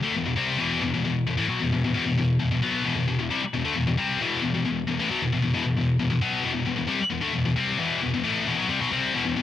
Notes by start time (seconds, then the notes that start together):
0.03 D3 A3
0.14 E2 B2
0.26 E2 B2
0.36 C3 G3 C4
0.59 E2 B2 E3
0.82 E2 B2
0.94 E2 B2
1.04 E2 B2
1.27 E2 B2
1.37 A2 E3
1.49 B2 F#3
1.60 E2 B2
1.72 E2 B2
1.84 E2 B2
1.94 E2 B2
2.06 E2 B2
2.18 E2 B2
2.40 E2 B2
2.51 E2 B2
2.62 B2 F#3 B3
2.84 E2 B2
2.96 E2 B2
3.07 E2 B2
3.19 E2 B2
3.30 C3 G3
3.42 muted distorted electric guitar stroke
3.54 E2 B2
3.64 D3 A3
3.75 E2 B2
3.87 E2 B2
3.97 C3 G3 C4
4.20 E2 B2 E3
4.42 E2 B2
4.55 E2 B2
4.65 E2 B2
4.87 E2 B2
5.00 A2 E3
5.10 B2 F#3
5.21 E2 B2
5.32 E2 B2
5.42 E2 B2
5.54 E2 B2
5.65 E2 B2
5.76 E2 B2
5.99 E2 B2
6.10 E2 B2
6.21 B2 F#3 B3
6.43 E2 B2
6.53 E2 B2
6.66 E2 B2
6.76 E2 B2
6.88 C3 G3
7.00 muted distorted electric guitar stroke
7.10 E2 B2
7.21 D3 A3
7.33 E2 B2
7.45 E2 B2
7.56 C3 G3 C4
7.78 E2 B2 E3
8.02 E2 B2
8.13 E2 B2
8.23 A2 E3 A3
8.45 E2 B2
8.57 B2 F#3
8.69 C3 G3
8.81 B2 F#3
8.91 C3 G3 C4
9.13 E2 B2
9.26 E2 B2
9.37 E2 B2